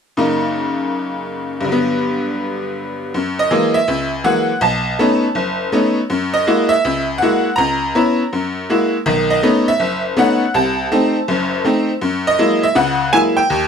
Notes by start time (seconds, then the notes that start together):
0.17 F#2 C#3 A#3 D#4
1.61 G2 D3
1.69 F#3 B3
3.14 F#2
3.39 D#5
3.51 E3 F#3 G#3 A#3
3.74 E5
3.88 C#2
4.24 E3 F#3 G#3 A#3 F#5
4.61 B1 A5
4.99 A3 B3 C#4 D#4
5.35 F#1
5.72 A3 B3 C#4 D#4
6.10 F#2
6.34 D#5
6.47 G#3 A#3 E4 F#4
6.69 E5
6.85 C#2
7.18 F#5
7.22 G#3 A#3 E4 F#4
7.56 C#2 A#5
7.95 B3 C#4 E4
8.33 F#2
8.70 G#3 A#3 E4 F#4
9.06 B1 D#3
9.30 D#5
9.43 A3 B3 C#4 D#4
9.68 E5
9.80 F#1
10.17 A3 B3 C#4 D#4 F#5
10.54 C2 A5
10.92 A3 C4 D#4
11.28 F#1 F#2
11.65 A3 C4 D#4
12.01 F#2
12.27 D#5
12.39 F#3 G#3 A#3 E4
12.63 E5
12.75 C#2 C#3 F#5
13.13 F#3 G#3 A#3 E4 G#5
13.37 G5
13.50 D#2